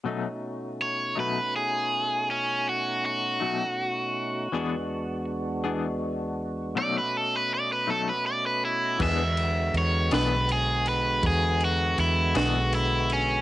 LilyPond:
<<
  \new Staff \with { instrumentName = "Overdriven electric guitar" } { \time 12/8 \key b \mixolydian \tempo 4. = 54 r4 cis''8 b'8 gis'4 cis'8 fis'8 fis'2~ | fis'4 r2 d''16 b'16 a'16 b'16 d''16 b'16 a'16 b'16 d''16 b'16 e'8 | \key e \mixolydian e''4 cis''8 b'8 gis'8 b'8 gis'8 fis'8 e'8 fis'8 e'8 cis'8 | }
  \new Staff \with { instrumentName = "Tonewheel organ" } { \time 12/8 \key b \mixolydian <b, a cis' dis' fis'>1. | <e, gis b d' fis'>2. <b, a cis' fis' dis''>2. | \key e \mixolydian <d gis b fis'>1. | }
  \new Staff \with { instrumentName = "Clean electric guitar" } { \time 12/8 \key b \mixolydian <b, fis a dis'>8 r4 <b, fis a dis'>8 r2 r8 <b, fis a dis'>8 r4 | <e b d' gis'>8 r4 <e b d' gis'>8 r4 <b, fis a dis'>8 r4 <b, fis a dis'>8 r4 | \key e \mixolydian <e b d' gis'>8 r4 <e b d' gis'>8 r2 r8 <e b d' gis'>8 r4 | }
  \new Staff \with { instrumentName = "Fingered electric bass" } { \clef bass \time 12/8 \key b \mixolydian r1. | r1. | \key e \mixolydian e,4 e,8 b,,4. e,4 e,8 b,,4. | }
  \new DrumStaff \with { instrumentName = "Drums" } \drummode { \time 12/8 r4. r4. r4. r4. | r4. r4. r4. r4. | <cymc bd>8 cymr8 cymr8 <cymr sn>8 cymr8 cymr8 <bd cymr>8 cymr8 cymr8 <cymr sn>8 cymr8 cymr8 | }
>>